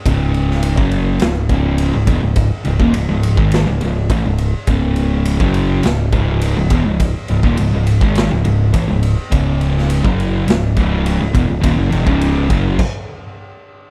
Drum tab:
CC |----------------|----------------|----------------|----------------|
RD |x-x-x-x-x-x-x-x-|x-x-x-x-x-x-x-x-|x-x-x-x-x-x-x-x-|x-x-x-x-x-x-x-x-|
SD |---o----o-------|--------o-------|--------o-------|--------o-------|
BD |o----o----o---o-|o--o---o----o---|o----o----o---o-|o--o---o----o---|

CC |----------------|--------x-------|
RD |x-x-x-x-x-x-x-x-|x-x-x-x---------|
SD |---o----o-------|----------------|
BD |o----o----o---o-|o--o--o-o-------|